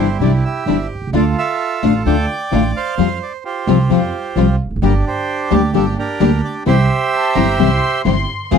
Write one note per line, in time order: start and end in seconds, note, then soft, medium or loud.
0.00 0.17 G1 medium
0.00 0.17 C4 medium
0.00 0.17 D4 medium
0.00 0.17 E4 medium
0.00 0.64 E4 medium
0.00 0.22 G4 soft
0.00 0.17 C5 medium
0.20 0.40 C2 medium
0.20 0.30 C3 medium
0.20 0.30 E3 medium
0.20 0.30 G3 medium
0.20 0.40 C4 medium
0.20 0.40 D4 medium
0.20 0.30 D4 medium
0.20 0.40 E4 medium
0.20 0.30 E4 medium
0.20 0.44 G4 soft
0.20 0.32 D5 medium
0.45 1.10 G4 medium
0.45 0.88 E5 medium
0.66 0.86 G1 medium
0.66 0.76 C3 medium
0.66 0.76 E3 medium
0.66 0.76 G3 medium
0.66 0.87 C4 medium
0.66 0.87 D4 medium
0.66 0.76 D4 medium
0.66 0.87 E4 medium
0.66 0.77 E4 medium
0.95 1.01 B1 soft
1.02 1.07 C2 soft
1.07 1.12 C#2 medium
1.13 1.33 D2 medium
1.13 1.23 D3 medium
1.13 1.33 A3 medium
1.13 1.23 A3 medium
1.13 1.33 D4 medium
1.13 1.23 D4 medium
1.13 1.33 F4 medium
1.13 1.23 F4 medium
1.13 2.03 F4 medium
1.13 1.37 A4 medium
1.13 1.25 D5 medium
1.38 2.26 A4 medium
1.38 1.85 E5 medium
1.83 2.02 A1 medium
1.83 1.92 D3 medium
1.83 2.02 A3 medium
1.83 1.92 A3 medium
1.83 2.02 D4 medium
1.83 1.92 D4 medium
1.83 2.02 F4 medium
1.83 1.92 F4 medium
1.83 1.94 F5 medium
2.06 2.25 D2 medium
2.06 2.15 D3 medium
2.06 2.25 A3 medium
2.06 2.15 A3 medium
2.06 2.25 D4 medium
2.06 2.15 D4 medium
2.06 2.25 F4 medium
2.06 2.16 F4 medium
2.06 2.95 D5 medium
2.06 2.72 G5 medium
2.51 2.72 A1 medium
2.51 2.61 D3 medium
2.51 2.72 A3 medium
2.51 2.61 A3 medium
2.51 2.72 D4 medium
2.51 2.61 D4 medium
2.51 2.72 F4 medium
2.51 2.62 F4 medium
2.76 3.44 C5 medium
2.76 3.19 F5 medium
2.98 3.18 F2 medium
2.98 3.07 F3 medium
2.98 3.07 G3 medium
2.98 3.18 G3 medium
2.98 3.18 C4 medium
2.98 3.07 C4 medium
2.98 3.18 F4 medium
2.98 3.08 F4 medium
3.23 3.33 D5 medium
3.45 4.56 F4 soft
3.45 4.56 G4 medium
3.45 4.56 C5 medium
3.67 3.87 C2 medium
3.67 3.76 F3 medium
3.67 3.87 G3 medium
3.67 3.77 G3 medium
3.67 3.87 C4 medium
3.67 3.77 C4 medium
3.67 3.87 F4 medium
3.67 3.77 F4 medium
3.90 4.09 F2 medium
3.90 3.99 F3 medium
3.90 4.10 G3 medium
3.90 3.99 G3 medium
3.90 4.10 C4 medium
3.90 3.99 C4 medium
3.90 4.10 F4 medium
3.90 4.00 F4 medium
4.36 4.55 C2 medium
4.36 4.45 F3 medium
4.36 4.56 G3 medium
4.36 4.45 G3 medium
4.36 4.56 C4 medium
4.36 4.46 C4 medium
4.36 4.56 F4 medium
4.36 4.46 F4 medium
4.65 4.70 E1 soft
4.71 4.75 F1 medium
4.76 4.81 F#1 medium
4.82 5.01 G1 medium
4.82 4.91 D3 medium
4.82 4.91 G3 medium
4.82 5.02 A#3 medium
4.82 4.91 A#3 medium
4.82 5.02 D4 medium
4.82 4.92 D4 medium
4.82 5.71 D4 medium
4.82 5.02 G4 medium
4.82 4.92 G4 medium
4.82 5.05 G4 medium
4.82 4.94 A#4 medium
5.07 5.94 G4 medium
5.07 5.54 C5 medium
5.51 5.71 D2 medium
5.51 5.60 D3 medium
5.51 5.60 G3 medium
5.51 5.71 A#3 medium
5.51 5.60 A#3 medium
5.51 5.71 D4 medium
5.51 5.60 D4 medium
5.51 5.71 G4 medium
5.51 5.61 G4 medium
5.51 5.74 D5 medium
5.73 5.94 G1 medium
5.73 5.83 D3 medium
5.73 5.83 G3 medium
5.73 5.94 A#3 medium
5.73 5.83 A#3 medium
5.73 5.94 D4 medium
5.73 5.83 D4 medium
5.73 5.97 D4 medium
5.73 5.94 G4 medium
5.73 5.84 G4 medium
5.73 5.86 A4 medium
5.99 6.63 D4 medium
5.99 6.63 G4 medium
5.99 6.41 A#4 medium
6.20 6.40 D2 medium
6.20 6.29 D3 medium
6.20 6.29 G3 medium
6.20 6.40 A#3 medium
6.20 6.30 A#3 medium
6.20 6.40 D4 medium
6.20 6.30 D4 medium
6.20 6.40 G4 medium
6.20 6.30 G4 medium
6.44 6.55 D5 medium
6.66 6.86 C2 medium
6.66 6.75 C3 medium
6.66 6.75 E3 medium
6.66 6.76 G3 medium
6.66 6.86 C4 medium
6.66 6.76 C4 medium
6.66 6.86 E4 medium
6.66 6.76 E4 medium
6.66 6.86 G4 medium
6.66 8.02 G4 medium
6.66 8.02 C5 medium
6.66 8.02 E5 loud
7.13 7.34 A5 medium
7.35 7.55 G1 medium
7.35 7.44 C3 medium
7.35 7.45 E3 medium
7.35 7.45 G3 medium
7.35 7.55 C4 medium
7.35 7.45 C4 medium
7.35 7.55 E4 medium
7.35 7.45 E4 medium
7.35 7.55 G4 medium
7.35 7.59 A#5 medium
7.58 7.78 C2 medium
7.58 7.68 C3 medium
7.58 7.68 E3 medium
7.58 7.68 G3 medium
7.58 7.78 C4 medium
7.58 7.68 C4 medium
7.58 7.78 E4 medium
7.58 7.68 E4 medium
7.58 7.78 G4 medium
7.58 8.04 C6 medium
8.05 8.25 G1 medium
8.05 8.14 C3 medium
8.05 8.14 E3 medium
8.05 8.14 G3 medium
8.05 8.24 C4 medium
8.05 8.15 C4 medium
8.05 8.25 E4 medium
8.05 8.15 E4 medium
8.05 8.25 G4 medium
8.05 8.48 C6 medium
8.51 8.58 F2 medium
8.51 8.58 C3 medium
8.51 8.58 F3 medium
8.51 8.58 G#3 medium
8.51 8.58 C4 medium
8.51 8.58 F4 medium
8.51 8.58 G#4 medium